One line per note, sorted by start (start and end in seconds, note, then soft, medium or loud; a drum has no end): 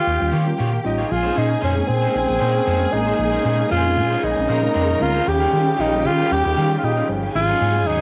0.00 0.10 A#3 medium
0.00 0.54 F4 loud
0.00 1.06 G4 medium
0.00 1.06 G5 medium
0.07 0.17 D#2 loud
0.20 0.29 D#2 loud
0.20 0.32 G3 medium
0.20 0.32 C#4 medium
0.20 0.32 F4 medium
0.20 muted clean electric guitar stroke medium
0.32 0.46 D#3 medium
0.32 0.51 D#3 loud
0.32 0.53 A#3 medium
0.32 0.47 F4 loud
0.32 0.46 G4 medium
0.32 0.45 C#5 medium
0.46 0.58 G3 medium
0.46 0.57 C#4 medium
0.46 0.57 F4 medium
0.46 muted clean electric guitar stroke soft
0.58 0.77 A#2 medium
0.58 0.79 A#3 medium
0.58 0.64 C#4 soft
0.58 0.64 F4 soft
0.58 0.72 F4 medium
0.58 0.72 G4 medium
0.58 0.71 C#5 medium
0.72 0.84 D#3 medium
0.72 muted clean electric guitar stroke soft
0.84 1.03 A1 medium
0.84 0.98 G3 medium
0.84 0.99 C#4 medium
0.84 1.13 D#4 medium
0.84 0.99 F4 medium
0.84 muted clean electric guitar stroke soft
0.98 1.08 A#3 soft
0.98 1.09 F4 medium
0.98 1.09 G4 medium
0.98 1.09 C#5 medium
1.08 1.29 A#1 loud
1.08 1.25 A#2 medium
1.08 8.01 C#3 loud
1.08 1.25 F3 medium
1.08 5.22 G#3 medium
1.08 5.23 A#3 medium
1.08 1.39 F4 loud
1.08 4.44 G#4 medium
1.08 4.44 G#5 medium
1.08 muted clean electric guitar stroke soft
1.23 1.34 C#4 medium
1.23 1.34 D#4 medium
1.23 1.35 G#4 medium
1.23 1.36 C5 loud
1.35 1.55 A#2 loud
1.35 1.52 C#4 medium
1.35 1.50 C#4 medium
1.35 1.50 D#4 medium
1.35 1.51 D#4 medium
1.35 1.63 D#4 medium
1.35 1.49 G#4 medium
1.35 1.48 C5 medium
1.49 muted clean electric guitar stroke soft
1.61 1.81 F2 loud
1.61 1.77 A#2 medium
1.61 1.77 F3 medium
1.61 1.82 C#4 medium
1.61 1.90 C#4 medium
1.61 1.76 D#4 loud
1.61 1.75 G#4 medium
1.61 1.74 C5 medium
1.75 1.88 G#3 medium
1.75 1.88 C4 medium
1.75 1.87 C#4 medium
1.75 1.87 D#4 medium
1.75 muted clean electric guitar stroke medium
1.87 2.07 A#2 loud
1.87 2.94 C4 loud
1.87 1.94 C#4 soft
1.87 1.94 D#4 soft
1.87 muted clean electric guitar stroke soft
2.02 2.18 C#4 medium
2.02 2.18 D#4 medium
2.02 2.18 G#4 medium
2.02 2.17 C5 medium
2.15 2.25 A#1 loud
2.15 2.29 C#4 medium
2.15 2.29 D#4 medium
2.29 2.37 A#1 loud
2.29 2.40 A#2 medium
2.29 2.40 F3 medium
2.29 muted clean electric guitar stroke soft
2.40 2.59 A#2 medium
2.40 2.61 C#4 medium
2.40 2.55 C#4 medium
2.40 2.55 D#4 loud
2.40 2.55 D#4 medium
2.40 2.54 G#4 medium
2.40 2.53 C5 loud
2.54 muted clean electric guitar stroke medium
2.66 2.85 F2 loud
2.66 2.87 C#4 medium
2.66 2.81 D#4 loud
2.66 2.80 G#4 medium
2.66 2.79 C5 medium
2.80 muted clean electric guitar stroke medium
2.92 3.11 A1 medium
2.92 3.07 G#3 medium
2.92 3.07 C4 medium
2.92 3.07 C#4 medium
2.92 3.70 D#4 loud
2.92 3.07 D#4 loud
2.92 muted clean electric guitar stroke medium
3.07 3.17 C#4 soft
3.07 3.17 D#4 medium
3.07 3.17 G#4 soft
3.07 3.18 C5 medium
3.18 3.37 A#1 loud
3.18 3.33 A#2 medium
3.18 3.33 F3 medium
3.18 muted clean electric guitar stroke soft
3.32 3.43 C#4 medium
3.32 3.43 D#4 medium
3.32 3.44 G#4 medium
3.32 3.44 C5 medium
3.44 3.63 A#2 loud
3.44 3.58 C#4 medium
3.44 3.61 C#4 medium
3.44 3.59 D#4 medium
3.44 3.58 D#4 medium
3.44 3.57 G#4 medium
3.44 3.57 C5 medium
3.58 muted clean electric guitar stroke soft
3.69 3.99 F2 loud
3.69 3.85 A#2 medium
3.69 3.85 F3 medium
3.69 3.91 C#4 medium
3.69 3.85 D#4 medium
3.69 4.25 F4 loud
3.69 3.84 G#4 medium
3.69 3.83 C5 loud
3.84 3.96 G#3 medium
3.84 3.96 C4 medium
3.84 3.95 C#4 medium
3.84 3.95 D#4 medium
3.84 muted clean electric guitar stroke medium
3.95 4.15 A#2 loud
3.95 4.02 C#4 soft
3.95 4.02 D#4 soft
3.95 muted clean electric guitar stroke soft
4.10 4.26 C#4 medium
4.10 4.26 D#4 medium
4.10 4.25 G#4 medium
4.10 4.25 C5 medium
4.23 4.33 A#1 loud
4.23 5.03 D#4 loud
4.36 4.46 A#1 medium
4.36 4.48 G#3 medium
4.36 4.48 C4 medium
4.36 4.48 C#4 medium
4.36 4.48 D#4 medium
4.36 muted clean electric guitar stroke medium
4.48 4.63 A#2 medium
4.48 4.67 A#2 loud
4.48 4.63 F3 medium
4.48 4.69 C#4 medium
4.48 4.62 D#4 loud
4.48 4.62 G#4 medium
4.48 5.25 A#4 medium
4.48 4.61 C5 loud
4.48 5.25 A#5 loud
4.62 4.74 G#3 medium
4.62 4.74 C4 medium
4.62 4.73 C#4 medium
4.62 4.73 D#4 medium
4.62 muted clean electric guitar stroke soft
4.73 4.93 F2 medium
4.73 4.95 C#4 medium
4.73 4.80 C#4 soft
4.73 4.88 D#4 medium
4.73 4.80 D#4 soft
4.73 4.88 G#4 medium
4.73 4.87 C5 medium
4.88 5.00 A#2 medium
4.88 5.00 F3 medium
4.88 muted clean electric guitar stroke soft
4.99 5.19 D2 medium
4.99 5.14 G#3 medium
4.99 5.14 C4 medium
4.99 5.15 C#4 medium
4.99 5.15 D#4 medium
4.99 5.29 F4 loud
4.99 muted clean electric guitar stroke soft
5.14 5.25 C#4 medium
5.14 5.26 D#4 medium
5.14 5.27 G#4 medium
5.14 5.27 C5 medium
5.26 5.45 D#2 loud
5.26 5.41 D#3 medium
5.26 7.33 D#3 loud
5.26 7.33 F4 medium
5.26 7.30 G4 medium
5.26 7.33 G4 loud
5.26 5.82 G4 loud
5.26 7.31 G5 medium
5.26 muted clean electric guitar stroke soft
5.40 5.51 G3 medium
5.40 5.52 C#4 medium
5.40 5.52 F4 medium
5.40 5.53 A#4 medium
5.52 5.71 D#3 loud
5.52 5.69 G3 medium
5.52 5.67 G3 medium
5.52 5.67 C#4 medium
5.52 5.67 F4 medium
5.52 5.65 A#4 medium
5.67 muted clean electric guitar stroke soft
5.78 6.06 A#1 loud
5.78 5.93 D#3 medium
5.78 5.99 G3 medium
5.78 5.93 C#4 medium
5.78 6.08 D#4 loud
5.78 5.92 F4 medium
5.78 5.92 A#4 loud
5.93 6.04 F3 medium
5.93 6.03 G3 medium
5.93 6.03 C#4 medium
5.93 muted clean electric guitar stroke medium
6.04 6.23 D#3 loud
6.04 6.10 G3 soft
6.04 6.10 C#4 medium
6.04 6.33 F4 loud
6.04 muted clean electric guitar stroke soft
6.19 6.34 G3 medium
6.19 6.34 C#4 medium
6.19 6.34 F4 medium
6.19 6.33 A#4 medium
6.31 6.41 D#2 loud
6.31 6.45 G3 medium
6.31 6.45 C#4 medium
6.31 6.77 G4 loud
6.45 6.53 D#2 loud
6.45 6.57 D#3 medium
6.45 muted clean electric guitar stroke medium
6.56 6.75 D#3 loud
6.56 6.77 G3 medium
6.56 6.71 G3 medium
6.56 6.71 C#4 medium
6.56 6.70 F4 medium
6.56 6.70 A#4 medium
6.71 muted clean electric guitar stroke soft
6.78 6.85 F4 medium
6.82 7.01 A#2 loud
6.82 7.09 D#4 loud
6.82 muted clean electric guitar stroke soft
6.97 7.07 G3 medium
6.97 7.08 C#4 medium
6.97 7.08 F4 medium
6.97 7.09 A#4 loud
7.09 7.27 G1 medium
7.09 7.23 F3 loud
7.09 7.23 G3 medium
7.09 7.23 C#4 loud
7.09 muted clean electric guitar stroke soft
7.23 muted clean electric guitar stroke medium
7.34 7.53 G#1 loud
7.34 7.49 G#2 medium
7.34 7.49 D#3 medium
7.34 8.01 F#3 medium
7.34 8.01 G#3 medium
7.34 7.88 F4 loud
7.34 8.01 G#4 medium
7.34 8.01 G#5 loud
7.34 muted clean electric guitar stroke soft
7.48 7.59 F#3 medium
7.48 7.60 C#4 medium
7.48 7.61 D#4 medium
7.48 7.61 G#4 loud
7.60 7.87 G#2 loud
7.60 7.78 F#3 medium
7.60 7.75 A#3 medium
7.60 7.75 C#4 medium
7.60 7.76 C#4 medium
7.60 7.75 D#4 medium
7.60 7.74 G#4 medium
7.75 muted clean electric guitar stroke medium
7.86 8.01 D#2 loud
7.86 8.01 G#2 medium
7.86 8.01 D#3 medium
7.86 8.01 F#3 medium
7.86 8.01 C#4 medium
7.86 8.01 D#4 loud
7.86 8.01 D#4 medium
7.86 8.01 G#4 medium